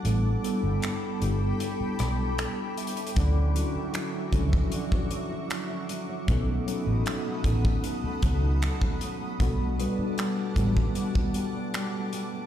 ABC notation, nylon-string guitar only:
X:1
M:4/4
L:1/16
Q:1/4=77
K:Amix
V:1 name="Nylon-string guitar" clef=bass
z16 | D, C F, E F, C F, C D, C F, E F, C F, C | B,, A, F, ^D F, A, F, A, B,, A, F, D F, A, F, A, | B,, A, G, D G, A, G, A, B,, A, G, D G, A, G, A, |]